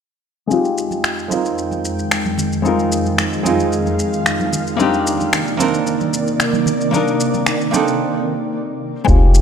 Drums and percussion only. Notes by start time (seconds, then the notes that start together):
0.51 high conga, shaker
0.65 shaker
0.78 shaker
0.91 high conga, shaker
1.04 finger snap, shaker
1.19 shaker
1.31 high conga, shaker
1.46 shaker
1.58 shaker
1.71 high conga, shaker
1.85 shaker
1.99 shaker
2.11 finger snap, shaker
2.26 high conga, shaker
2.38 low conga, shaker
2.53 shaker
2.65 high conga, shaker
2.79 shaker
2.92 shaker
3.05 high conga, shaker
3.18 finger snap, shaker
3.33 shaker
3.45 high conga, shaker
3.60 shaker
3.73 shaker
3.86 high conga, shaker
3.99 shaker
4.13 shaker
4.26 finger snap, shaker
4.40 high conga, shaker
4.52 low conga, shaker
4.67 shaker
4.80 high conga, shaker
4.94 shaker
5.07 shaker
5.20 high conga, shaker
5.33 finger snap, shaker
5.47 shaker
5.60 high conga, shaker
5.74 shaker
5.87 shaker
6.01 high conga, shaker
6.14 shaker
6.27 shaker
6.40 finger snap, shaker
6.53 high conga, shaker
6.66 low conga, shaker
6.81 shaker
6.93 high conga, shaker
7.08 shaker
7.20 shaker
7.34 high conga, shaker
7.46 finger snap, shaker
7.61 shaker
7.74 high conga, shaker
7.88 shaker
9.08 kick, shaker
9.35 shaker